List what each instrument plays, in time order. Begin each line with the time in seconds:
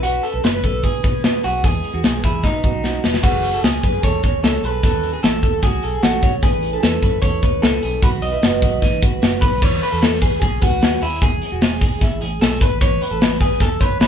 Already playing: fingered electric bass B1
0.03 twelve-string acoustic guitar B3 C#4 F#4 B4, clean electric guitar F#4 B4, closed hi-hat
0.23 clean electric guitar A4, closed hi-hat
0.33 fingered electric bass B1, twelve-string acoustic guitar C#4 F#4 B4, clean electric guitar A4
0.44 fingered electric bass F#1, clean electric guitar B4, snare, closed hi-hat
0.53 twelve-string acoustic guitar C#4 F#4 B4
0.64 fingered electric bass B1, clean electric guitar A4 B4, kick, closed hi-hat
0.83 fingered electric bass B2, clean electric guitar G#4, kick, closed hi-hat
1.03 fingered electric bass B2, twelve-string acoustic guitar B3 C#4 F#4 B4, clean electric guitar B4, kick, closed hi-hat
1.24 twelve-string acoustic guitar B3 C#4 F#4 B4, clean electric guitar B4, snare, closed hi-hat
1.44 fingered electric bass B1, twelve-string acoustic guitar B3 C#4 F#4 B4, clean electric guitar F#4 G#4, closed hi-hat
1.64 fingered electric bass E2, twelve-string acoustic guitar E3 G#3 B3 D#4 G#4, clean electric guitar G#4, kick, closed hi-hat
1.84 closed hi-hat
1.93 fingered electric bass E2, twelve-string acoustic guitar B3 D#4 G#4, clean electric guitar F#4
2.04 fingered electric bass B1, clean electric guitar G#4, snare, closed hi-hat
2.13 twelve-string acoustic guitar B3 D#4 G#4
2.24 fingered electric bass E2, clean electric guitar E4 G#4, kick, closed hi-hat
2.43 twelve-string acoustic guitar B2 D#3 F#3 C#4 D#4 B4, fingered electric bass B2, clean electric guitar D#4, kick, snare, closed hi-hat
2.62 fingered electric bass B1, twelve-string acoustic guitar F#3 C#4 D#4 B4, clean electric guitar F#4, kick, closed hi-hat
2.83 twelve-string acoustic guitar F#3 C#4 D#4 B4, clean electric guitar F#4, snare
3.03 fingered electric bass E1, twelve-string acoustic guitar F#3 C#4 D#4 B4, clean electric guitar B4, snare
3.14 snare
3.23 fingered electric bass F#1, twelve-string acoustic guitar F#3 A3 C#4 F#4 G#4, clean electric guitar F#4 B4, kick, crash
3.43 closed hi-hat
3.53 twelve-string acoustic guitar C#4 F#4 G#4, clean electric guitar A4
3.63 fingered electric bass C#2, clean electric guitar G#4 B4, snare, closed hi-hat
3.83 fingered electric bass F#2, twelve-string acoustic guitar A3 C#4 F#4 G#4, clean electric guitar B4, kick, closed hi-hat
4.03 fingered electric bass E2, clean electric guitar A4 C#5, kick, closed hi-hat
4.22 fingered electric bass D#2, twelve-string acoustic guitar A3 C#4 F#4 G#4, clean electric guitar C#5, kick, closed hi-hat
4.43 fingered electric bass C#2, clean electric guitar A4 C#5, snare, closed hi-hat
4.63 fingered electric bass B1, twelve-string acoustic guitar A3 C#4 F#4 G#4, clean electric guitar A4 B4, closed hi-hat
4.83 fingered electric bass D#2, twelve-string acoustic guitar D#3 F#3 C#4 F#4 A4, clean electric guitar A4, kick, closed hi-hat
5.03 closed hi-hat
5.13 twelve-string acoustic guitar C#4 F#4 A4, clean electric guitar G#4
5.23 fingered electric bass A1, clean electric guitar A4, snare, closed hi-hat
5.43 fingered electric bass D#2, twelve-string acoustic guitar F#3 C#4 F#4 A4, clean electric guitar A4, kick, closed hi-hat
5.62 fingered electric bass C#2, clean electric guitar F#4 G#4, kick, closed hi-hat
5.82 fingered electric bass B1, twelve-string acoustic guitar F#3 C#4 F#4 A4, clean electric guitar A4, closed hi-hat
6.03 fingered electric bass A1, clean electric guitar F#4 A4, snare, closed hi-hat
6.22 fingered electric bass B1, twelve-string acoustic guitar F#3 C#4 F#4 A4, clean electric guitar C#5, kick, closed hi-hat
6.42 fingered electric bass A1, twelve-string acoustic guitar A3 C#4 E4 B4, clean electric guitar G#4 B4, kick, closed hi-hat
6.63 closed hi-hat
6.72 twelve-string acoustic guitar C#4 E4 B4, clean electric guitar A4
6.83 fingered electric bass E2, clean electric guitar A4 B4, snare, closed hi-hat
7.02 fingered electric bass F#2, twelve-string acoustic guitar A3 C#4 E4 B4, clean electric guitar B4, kick, closed hi-hat
7.22 fingered electric bass E2, clean electric guitar A4 C#5, kick, closed hi-hat
7.42 fingered electric bass D#2, twelve-string acoustic guitar A3 C#4 E4 B4, clean electric guitar B4, kick, closed hi-hat
7.62 fingered electric bass C#2, clean electric guitar A4 B4, snare, closed hi-hat
7.82 fingered electric bass B1, twelve-string acoustic guitar A3 C#4 E4 B4, clean electric guitar G#4, closed hi-hat
8.02 fingered electric bass B1, twelve-string acoustic guitar B2 D#3 F#3 B3 D#4 B4, clean electric guitar F#4 B4, kick, closed hi-hat
8.22 clean electric guitar D#5, closed hi-hat
8.32 twelve-string acoustic guitar F#3 B3 D#4 B4, clean electric guitar E4
8.42 fingered electric bass F#1, clean electric guitar F#4, snare, closed hi-hat
8.62 fingered electric bass B1, twelve-string acoustic guitar F#3 B3 D#4 B4, clean electric guitar F#4, kick, closed hi-hat
8.82 fingered electric bass A1, clean electric guitar D#4, kick, snare, closed hi-hat
9.02 fingered electric bass G#1, twelve-string acoustic guitar F#3 B3 D#4 B4, clean electric guitar F#4, kick, closed hi-hat
9.22 fingered electric bass F#1, clean electric guitar F#4, snare, closed hi-hat
9.41 fingered electric bass B1, twelve-string acoustic guitar F#3 B3 D#4 B4, clean electric guitar B4, kick, open hi-hat
9.62 fingered electric bass E2, clean electric guitar B4 C#5, kick, crash
9.82 clean electric guitar B4, hi-hat pedal, open hi-hat
9.92 fingered electric bass E2, clean electric guitar A4
10.02 clean electric guitar A4 B4, snare, hi-hat pedal, open hi-hat
10.22 clean electric guitar G#4 B4, kick, hi-hat pedal, open hi-hat
10.41 fingered electric bass B1, clean electric guitar G#4, kick, hi-hat pedal, open hi-hat
10.62 fingered electric bass C#2, clean electric guitar F#4 B4, kick, hi-hat pedal, open hi-hat
10.82 fingered electric bass D#2, clean electric guitar B4, snare, hi-hat pedal, open hi-hat
11.02 fingered electric bass D#2, clean electric guitar E4 G#4, hi-hat pedal, open hi-hat
11.22 fingered electric bass E1, clean electric guitar G#4, kick, hi-hat pedal, open hi-hat
11.42 hi-hat pedal, open hi-hat
11.52 fingered electric bass E1, clean electric guitar F#4
11.61 clean electric guitar G#4, snare, hi-hat pedal, open hi-hat
11.81 clean electric guitar G#4, kick, hi-hat pedal, open hi-hat
12.01 fingered electric bass G#1, clean electric guitar E4, kick, snare, hi-hat pedal, open hi-hat
12.21 fingered electric bass A1, clean electric guitar G#4, hi-hat pedal, open hi-hat
12.41 fingered electric bass B1, clean electric guitar G#4 A4, snare, hi-hat pedal, open hi-hat
12.61 fingered electric bass G#1, clean electric guitar B4, kick, hi-hat pedal, open hi-hat
12.81 fingered electric bass A1, clean electric guitar B4 C#5, kick, hi-hat pedal, open hi-hat
13.01 clean electric guitar B4, hi-hat pedal, open hi-hat
13.11 fingered electric bass A1, clean electric guitar A4
13.21 clean electric guitar B4, snare, hi-hat pedal, open hi-hat
13.41 clean electric guitar G#4 B4, kick, hi-hat pedal, open hi-hat
13.60 fingered electric bass E1, clean electric guitar A4, kick, snare, hi-hat pedal, open hi-hat
13.80 fingered electric bass F#1, clean electric guitar B4 C#5, kick, hi-hat pedal, open hi-hat
14.00 fingered electric bass G#1, clean electric guitar B4 C#5, snare, hi-hat pedal, open hi-hat